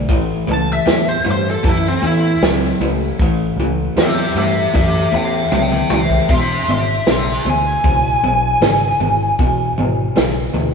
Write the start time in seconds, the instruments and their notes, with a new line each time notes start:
0.09 picked electric bass A1, overdriven electric guitar A2 E3, kick, open hi-hat
0.47 picked electric bass C#2, overdriven electric guitar A2 E3
0.52 lead electric guitar A5
0.73 lead electric guitar E5
0.86 picked electric bass E2, overdriven electric guitar A2 F#3, lead electric guitar E5, snare, open hi-hat
1.09 lead electric guitar C5
1.25 picked electric bass G2, overdriven electric guitar A2 E3
1.31 lead electric guitar C5
1.51 lead electric guitar A4
1.64 picked electric bass F#2, overdriven electric guitar A2 E3, kick, open hi-hat
1.69 lead electric guitar E4
1.88 lead electric guitar C4
2.02 picked electric bass E2, overdriven electric guitar A2 E3
2.07 lead electric guitar E4
2.41 picked electric bass C#2, overdriven electric guitar A2 F#3, snare, open hi-hat
2.80 picked electric bass C#2, overdriven electric guitar A2 E3
3.19 picked electric bass A1, overdriven electric guitar A2 E3, kick, open hi-hat
3.57 picked electric bass C#2, overdriven electric guitar A2 E3
3.96 picked electric bass E2, overdriven electric guitar A2 F#3, lead electric guitar G4 E5, snare, open hi-hat
4.35 picked electric bass G2, overdriven electric guitar A2 E3, lead electric guitar G4
4.39 lead electric guitar E5
4.74 picked electric bass F#2, overdriven electric guitar A2 E3, lead electric guitar G4 E5, kick, open hi-hat
5.12 picked electric bass E2, overdriven electric guitar A2 E3, lead electric guitar E5
5.16 lead electric guitar G5
5.52 picked electric bass C#2, overdriven electric guitar A2 F#3, lead electric guitar E5 G5, high tom
5.72 mid tom
5.90 picked electric bass C#2, overdriven electric guitar A2 E3, lead electric guitar E5, mid tom
5.94 lead electric guitar G5
6.10 kick
6.29 picked electric bass E1, overdriven electric guitar E2 B2, lead electric guitar E5 C6, kick, open hi-hat
6.68 picked electric bass G#1, overdriven electric guitar E2 B2, lead electric guitar E5 C6
7.06 picked electric bass B1, overdriven electric guitar E2 C#3, lead electric guitar E5 C6, snare, open hi-hat
7.45 picked electric bass D2, overdriven electric guitar E2 B2
7.50 lead electric guitar G#5
7.84 picked electric bass C#2, overdriven electric guitar E2 B2, kick, open hi-hat
8.23 picked electric bass B1, overdriven electric guitar E2 B2
8.61 picked electric bass G#1, overdriven electric guitar E2 C#3, snare, open hi-hat
9.00 picked electric bass G#1, overdriven electric guitar E2 B2
9.39 picked electric bass E1, overdriven electric guitar E2 B2, kick, open hi-hat
9.78 picked electric bass G#1, overdriven electric guitar E2 B2
10.16 picked electric bass B1, overdriven electric guitar E2 C#3, snare, open hi-hat
10.54 picked electric bass D2, overdriven electric guitar E2 B2